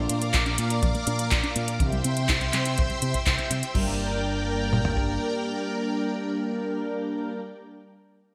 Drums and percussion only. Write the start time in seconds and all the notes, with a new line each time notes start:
0.09 closed hi-hat
0.22 closed hi-hat
0.34 kick, clap, closed hi-hat
0.46 closed hi-hat
0.58 closed hi-hat
0.70 closed hi-hat
0.83 kick, closed hi-hat
0.95 closed hi-hat
1.07 closed hi-hat
1.19 closed hi-hat
1.31 kick, clap, closed hi-hat
1.44 closed hi-hat
1.56 closed hi-hat
1.68 closed hi-hat
1.80 kick, closed hi-hat
1.92 closed hi-hat
2.04 closed hi-hat
2.17 closed hi-hat
2.29 kick, clap, closed hi-hat
2.41 closed hi-hat
2.53 clap, closed hi-hat
2.65 closed hi-hat
2.78 kick, closed hi-hat
2.90 closed hi-hat
3.02 closed hi-hat
3.14 kick, closed hi-hat
3.26 kick, clap, closed hi-hat
3.39 closed hi-hat
3.51 closed hi-hat
3.63 closed hi-hat
3.75 kick, crash
4.73 mid tom
4.85 floor tom
4.97 kick